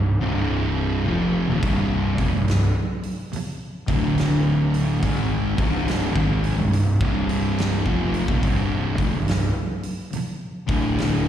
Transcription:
Already playing: C1
0.20 C1 C2 G2 C3
1.04 F1 F2 C3 F3
1.48 D#1 D#2 A#2
1.62 C1 C2 G2 C3, kick, open hi-hat
2.18 F1 F2 C3, kick, open hi-hat
2.32 C1 C2 G2
2.48 snare, open hi-hat
3.03 open hi-hat
3.33 muted distorted electric guitar stroke, muted fingered electric bass stroke, open hi-hat
3.87 D1 D2 A2 D3, kick, open hi-hat
4.18 snare, open hi-hat
4.74 open hi-hat
5.02 G#1 G#2 D#3 G#3, kick, open hi-hat
5.57 C1 C2 G2 C3, kick, open hi-hat
5.88 snare, open hi-hat
6.15 G#1 G#2 D#3 G#3, kick
6.44 open hi-hat
6.58 C1 C2 G2
6.73 open hi-hat
7.01 C1 C2 G2 C3, kick
7.29 open hi-hat
7.58 snare, open hi-hat
7.85 F1 F2 C3 F3, kick
8.14 open hi-hat
8.28 D#1 D#2 A#2, kick
8.42 C1 C2 G2 C3, kick, open hi-hat
8.97 F1 F2 C3, kick, open hi-hat
9.12 C1 C2 G2
9.28 snare, open hi-hat
9.83 open hi-hat
10.12 muted distorted electric guitar stroke, muted fingered electric bass stroke, open hi-hat
10.67 D1 D2 A2 D3, kick, open hi-hat
10.98 snare, open hi-hat

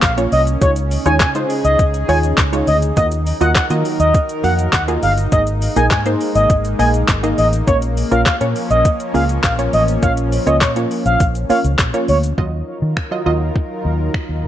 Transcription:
Already playing: A#3 C#4
0.02 A#1 F5, kick, snare, clap, closed hi-hat, shaker
0.17 A#3 C#4 F4 C#5, closed hi-hat, shaker
0.32 C2 D#5, open hi-hat, shaker
0.47 closed hi-hat, shaker
0.61 C#2 C#3 G#3 D#4 F4 G#4 C#5, kick, closed hi-hat, shaker
0.76 closed hi-hat, shaker
0.91 open hi-hat, shaker
1.06 D#2 G#3 D#4 F4 C#5 G#5, closed hi-hat, shaker
1.20 C#3 G#5, kick, snare, clap, closed hi-hat, shaker
1.35 G#3 D#4 F4 C5, closed hi-hat, shaker
1.50 open hi-hat, shaker
1.64 C#2 D#5, closed hi-hat, shaker
1.79 C#2, kick, closed hi-hat, shaker
1.94 closed hi-hat, shaker
2.09 D#2 G#3 D#4 F4 C#5 G#5, open hi-hat, shaker
2.23 closed hi-hat, shaker
2.37 C#2, kick, snare, clap, closed hi-hat, shaker
2.53 G#3 D#4 F4 C#5, closed hi-hat, shaker
2.67 D2 D#5, open hi-hat, shaker
2.82 closed hi-hat, shaker
2.97 D#2 D#3 F#3 A#3 F4 F#4 A#4 D#5, kick, closed hi-hat, shaker
3.12 closed hi-hat, shaker
3.27 open hi-hat, shaker
3.41 D#2 A#3 F4 F#4 D#5 F#5, closed hi-hat, shaker
3.55 F#5, kick, snare, clap, closed hi-hat, shaker
3.70 D#3 A#3 F4 F#4 D#5, closed hi-hat, shaker
3.85 open hi-hat, shaker
4.00 D#2 D#5, closed hi-hat, shaker
4.14 kick, closed hi-hat, shaker
4.29 closed hi-hat, shaker
4.44 F2 A#3 F#4 F5 F#5, open hi-hat, shaker
4.59 closed hi-hat, shaker
4.73 D#2 F#5, kick, snare, clap, closed hi-hat, shaker
4.88 A#3 F4 F#4 G#4, closed hi-hat, shaker
5.03 G1 F5, open hi-hat, shaker
5.18 closed hi-hat, shaker
5.32 G#1 G#3 A#3 D#4 G#4 D#5, kick, closed hi-hat, shaker
5.47 closed hi-hat, shaker
5.62 open hi-hat, shaker
5.76 A#1 A#3 D#4 G#4 D#5 G#5, closed hi-hat, shaker
5.90 G#2 G#5, kick, snare, clap, closed hi-hat, shaker
6.06 A#3 D#4 G#4 C5, closed hi-hat, shaker
6.21 open hi-hat, shaker
6.35 G#1 D#5, closed hi-hat, shaker
6.50 kick, closed hi-hat, shaker
6.65 closed hi-hat, shaker
6.79 A#1 A#3 D#4 G#4 D#5 G#5, open hi-hat, shaker
6.94 closed hi-hat, shaker
7.08 G#1, kick, snare, clap, closed hi-hat, shaker
7.23 A#3 D#4 G#4 D#5, closed hi-hat, shaker
7.38 A1 D#5, open hi-hat, shaker
7.53 closed hi-hat, shaker
7.67 A#1 F3 A#3 C#4 F4 C#5, kick, closed hi-hat, shaker
7.82 closed hi-hat, shaker
7.97 open hi-hat, shaker
8.11 A#1 A#3 C#4 F4 A#4 F5, closed hi-hat, shaker
8.26 F5, kick, snare, clap, closed hi-hat, shaker
8.41 A#2 A#3 C#4 F4 C#5, closed hi-hat, shaker
8.56 open hi-hat, shaker
8.70 A#1 D#5, closed hi-hat, shaker
8.85 kick, closed hi-hat, shaker
9.00 closed hi-hat, shaker
9.14 C#2 A#3 C#4 F4 G#4 F5, open hi-hat, shaker
9.29 closed hi-hat, shaker
9.43 A#1 F5, kick, snare, clap, closed hi-hat, shaker
9.58 A#3 C#4 F4 C#5, closed hi-hat, shaker
9.73 A1 D#5, open hi-hat, shaker
9.88 closed hi-hat, shaker
10.02 A#1 A#3 C#4 F4 C#5 F5, kick, closed hi-hat, shaker
10.17 closed hi-hat, shaker
10.32 open hi-hat, shaker
10.47 C#2 A#3 C#4 F4 C#5 D#5, closed hi-hat, shaker
10.61 A#2 C#5, kick, snare, clap, closed hi-hat, shaker
10.76 A#3 C#4 F4 C#5, closed hi-hat, shaker
10.91 open hi-hat, shaker
11.06 A#1 F5, closed hi-hat, shaker
11.20 A#1, kick, closed hi-hat, shaker
11.35 closed hi-hat, shaker
11.50 A#3 C#4 F4 C#5 F5, muted fingered electric bass stroke, open hi-hat, shaker
11.64 C#2, closed hi-hat, shaker
11.78 A#1, kick, snare, clap, closed hi-hat, shaker
11.94 A#3 C#4 F4 C#5, closed hi-hat, shaker
12.08 D2 C#5, open hi-hat, shaker
12.23 closed hi-hat, shaker
12.38 D#2 D#3 F#3 D#4 F4 A#4 D#5, kick
12.82 D#3
12.97 finger snap, kick
13.11 F#3 F4 D#5
13.26 D#2 F#3 F4 D#5
13.56 kick
13.85 D#2
14.14 finger snap, kick
14.29 D#2
14.44 F#1

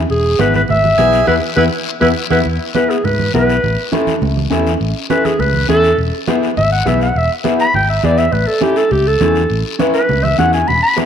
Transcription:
0.10 E1 G#4, high conga, long guiro
0.39 G#1 B3 E4 G#4 B4, high conga, short guiro
0.54 B4, high conga, short guiro
0.68 G#1 E5, high conga, low conga, long guiro
0.84 high conga
0.98 B1 B3 E4 G#4, high conga, short guiro
1.13 short guiro
1.27 E2 B3 E4 G#4 B4, high conga, long guiro
1.56 E2 B3 E4 G#4 B4, high conga, long guiro
2.01 E2 B3 E4 G#4 B4, high conga, long guiro
2.30 E2 B3 E4 G#4 B4, high conga, long guiro
2.45 E2, high conga, long guiro
2.75 B3 E4 G#4 B4, high conga, short guiro
2.90 G#4, short guiro
3.04 G#2 B4, high conga, low conga, long guiro
3.19 high conga
3.34 B1 B3 E4 G#4 B4, high conga, short guiro
3.49 short guiro
3.64 A1, high conga, low conga, long guiro
3.92 C#4 E4 A4, high conga, short guiro
4.07 high conga, short guiro
4.22 C#2, high conga, low conga, long guiro
4.37 high conga
4.50 E2 C#4 E4 A4, high conga, short guiro
4.67 short guiro
4.81 A1, high conga, long guiro
5.10 C#4 E4 A4 B4, high conga, short guiro
5.25 G#4, high conga, short guiro
5.39 C#2 B4, high conga, low conga, long guiro
5.53 high conga
5.68 E2 C#4 E4 A4, high conga, short guiro
5.84 short guiro
5.98 E1, high conga, long guiro
6.27 B3 E4 G#4, high conga, short guiro
6.43 short guiro
6.57 G#1 E5, high conga, low conga, long guiro
6.72 F#5
6.85 B1 B3 E4 G#4 E5, high conga, low conga, short guiro
7.01 F#5, short guiro
7.16 E1 E5, high conga, long guiro
7.44 B3 E4 G#4, high conga, short guiro
7.60 B5, short guiro
7.74 G#1 G5, high conga, low conga, long guiro
7.90 E5
8.03 E2 B3 E4 G#4 D5, high conga, short guiro
8.18 E5, short guiro
8.32 A1 B4, high conga, low conga, long guiro
8.47 A4
8.61 C#4 E4 G4 A4, high conga, short guiro
8.76 A4, short guiro
8.91 C#2 G4, high conga, low conga, long guiro
9.07 A4
9.21 E2 C#4 E4 G#4, high conga, low conga, short guiro
9.35 short guiro
9.50 A1, high conga, long guiro
9.79 C#4 E4 B4, high conga, short guiro
9.94 B4, short guiro
10.09 C#2, high conga, low conga, long guiro
10.23 E5, high conga
10.38 E2 C#4 E4 G#4 F#5, high conga, short guiro
10.53 G#5, short guiro
10.68 E1 B5, high conga, low conga, long guiro
10.83 B5
10.96 B3 E4 G#4, high conga, short guiro

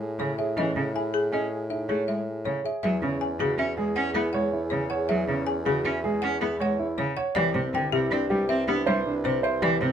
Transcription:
Already playing: A2
0.00 G#4
0.19 C#3 G#4 C#5
0.38 G#4 E5
0.57 E3 C#4 G#4 D#5
0.76 C#3 G#4
0.94 E4 G#4 G#5
1.14 G#4
1.32 C#4 G#4 D#5
1.52 G#4
1.70 D#4 G#4 E5
1.89 A3 G#4 C#5
2.08 G#3 G#4 E5
2.27 G#4
2.45 C#3 G#4 C#5
2.64 G#4 E5
2.83 E2 F#3 G#4 E5
3.02 C#3 C#4
3.21 G#5
3.40 C#3 F#4 G#4
3.58 C#4 E4 E5
3.77 G#3 G#4
3.96 C#4 F#5
4.15 B3 E4 G#4
4.33 G#3 C#5 F#5
4.53 E4
4.70 C#3 C#5
4.90 C#5 F#5
5.09 F#3 G#4 E5
5.28 C#3 C#4
5.47 G#5
5.66 C#3 F#4 G#4
5.85 C#4 E4 E5
6.04 G#3 G#4
6.22 C#4 F#5
6.41 B3 E4 G#4
6.60 G#3 C#5 F#5
6.79 E4
6.98 C#3 C#5
7.17 C#5 F#5
7.35 C2 E3 G4 B4 D5
7.54 C3 C4
7.73 D3 G5
7.92 C3 E4 G4
8.11 C4 D4 D5
8.30 G3 G4
8.49 C4 E5
8.68 B3 D4 G4
8.86 G3 C5 E5
9.05 D4
9.24 C3 C5
9.43 C5 E5
9.62 E3 G4 D5
9.81 C3 C4

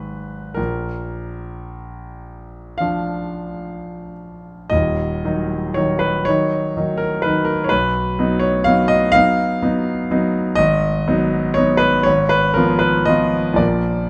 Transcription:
Already playing: G#1 F#3 G#3 D#4 B4
0.54 A#1 A#4
2.78 F3 D4 F5
4.70 D#1 D#2 D#5
5.25 D#3 F#3 D#4
5.74 D#3 F#3 D#4 C#5
5.99 B4
6.25 D#3 F#3 D#4 C#5
6.77 D#3 F#3 D#4
6.98 A#4
7.22 D#3 F#3 D#4 B4
7.45 A#4
7.64 C#5
7.69 B1 B4
8.19 F#3 B3 D#4
8.39 C#5
8.64 F#3 B3 D#4 F5
8.88 D#5
9.12 F#3 B3 D#4 F5
9.62 F#3 B3 D#4
10.11 F#3 B3 D#4
10.55 G#1 D#5
11.08 F#3 B3 D#4
11.54 F#3 B3 D#4 C#5
11.77 B4
12.03 G#1 C#5
12.29 B4
12.54 F3 B3 F4 A#4
12.79 B4
13.05 F3 B3 F4 D#5
13.54 A#1 F3 A#3 A#4 D5

